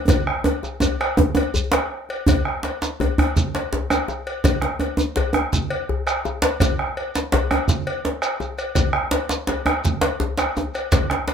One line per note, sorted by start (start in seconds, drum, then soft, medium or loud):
0.08 bombo low loud
0.08 cowbell medium
0.08 djembe slap medium
0.08 djembe tone loud
0.08 djembe tone medium
0.08 djembe bass medium
0.08 shekere medium
0.27 bombo rim medium
0.27 djembe slap soft
0.44 cowbell soft
0.44 djembe tone loud
0.63 bombo rim soft
0.63 djembe tone medium
0.63 shekere soft
0.80 cowbell soft
0.80 djembe slap soft
0.80 djembe tone loud
0.80 djembe bass medium
0.80 shekere medium
1.01 bombo rim medium
1.01 cowbell medium
1.17 bombo low medium
1.17 djembe slap medium
1.17 djembe tone loud
1.17 djembe tone medium
1.35 bombo rim soft
1.35 cowbell medium
1.35 djembe slap soft
1.35 djembe tone loud
1.54 djembe bass medium
1.54 shekere medium
1.72 bombo rim medium
1.72 cowbell soft
1.72 djembe slap loud
1.72 djembe tone medium
1.72 shekere soft
1.92 bombo rim soft
2.09 cowbell soft
2.09 djembe slap soft
2.26 bombo low medium
2.26 cowbell medium
2.26 djembe slap medium
2.26 djembe bass loud
2.26 djembe bass medium
2.26 shekere soft
2.45 bombo rim medium
2.45 djembe slap soft
2.63 cowbell soft
2.63 djembe slap medium
2.82 djembe slap medium
2.82 shekere soft
3.00 cowbell soft
3.00 djembe tone medium
3.00 djembe bass medium
3.18 bombo rim medium
3.18 cowbell soft
3.18 djembe bass loud
3.36 bombo low medium
3.36 djembe slap medium
3.36 shekere medium
3.55 cowbell soft
3.55 djembe slap medium
3.73 bombo rim soft
3.73 djembe slap medium
3.73 djembe bass medium
3.90 bombo rim medium
3.90 cowbell soft
3.90 djembe tone medium
3.90 shekere soft
4.08 bombo rim soft
4.08 djembe tone medium
4.08 shekere soft
4.27 cowbell soft
4.27 djembe slap soft
4.44 bombo low loud
4.44 cowbell medium
4.44 djembe slap medium
4.44 djembe tone loud
4.44 djembe bass medium
4.44 shekere soft
4.62 bombo rim medium
4.62 djembe slap medium
4.62 djembe slap soft
4.79 cowbell soft
4.79 djembe tone medium
4.97 djembe tone loud
4.97 shekere soft
5.16 cowbell soft
5.16 djembe slap medium
5.16 djembe bass medium
5.33 bombo rim medium
5.33 djembe tone medium
5.53 bombo low medium
5.53 djembe slap medium
5.53 shekere soft
5.70 cowbell medium
5.89 bombo rim soft
5.89 djembe bass medium
6.07 bombo rim medium
6.07 cowbell soft
6.07 shekere soft
6.25 bombo rim soft
6.25 djembe tone medium
6.25 shekere soft
6.42 cowbell medium
6.42 djembe slap loud
6.42 shekere soft
6.44 djembe slap soft
6.60 bombo low loud
6.60 cowbell medium
6.60 djembe slap medium
6.60 djembe tone medium
6.60 djembe bass medium
6.60 shekere soft
6.79 bombo rim medium
6.79 djembe slap soft
6.97 cowbell soft
7.15 djembe slap medium
7.15 shekere soft
7.32 cowbell soft
7.32 djembe slap loud
7.32 djembe tone medium
7.32 djembe bass medium
7.51 bombo rim medium
7.51 cowbell soft
7.51 djembe tone medium
7.68 bombo low loud
7.68 djembe slap medium
7.68 shekere medium
7.87 cowbell medium
8.05 bombo rim soft
8.05 djembe slap medium
8.22 bombo rim medium
8.22 cowbell soft
8.22 shekere soft
8.40 bombo rim soft
8.40 djembe tone medium
8.40 shekere soft
8.58 cowbell soft
8.58 djembe slap soft
8.58 shekere soft
8.75 bombo low loud
8.75 cowbell soft
8.75 djembe slap medium
8.75 djembe bass medium
8.75 shekere medium
8.93 bombo rim medium
8.93 djembe slap soft
9.11 bombo rim soft
9.11 cowbell soft
9.11 djembe slap loud
9.29 djembe slap medium
9.29 shekere soft
9.31 djembe slap soft
9.47 bombo rim soft
9.47 cowbell soft
9.47 djembe slap medium
9.47 djembe tone medium
9.66 bombo rim medium
9.66 cowbell soft
9.66 djembe tone medium
9.85 bombo rim soft
9.85 bombo low medium
9.85 djembe slap medium
9.85 shekere medium
10.01 cowbell medium
10.01 djembe slap loud
10.03 djembe slap soft
10.20 djembe slap medium
10.20 djembe bass medium
10.38 bombo rim medium
10.38 cowbell soft
10.38 djembe slap medium
10.38 shekere soft
10.56 djembe slap soft
10.56 djembe tone medium
10.56 shekere soft
10.74 bombo rim soft
10.74 cowbell soft
10.74 shekere soft
10.92 bombo low loud
10.92 cowbell medium
10.92 djembe slap loud
10.92 djembe slap medium
10.92 djembe bass medium
10.92 shekere medium
11.10 bombo rim medium
11.10 djembe slap soft
11.10 djembe slap medium
11.28 cowbell soft
11.28 djembe slap medium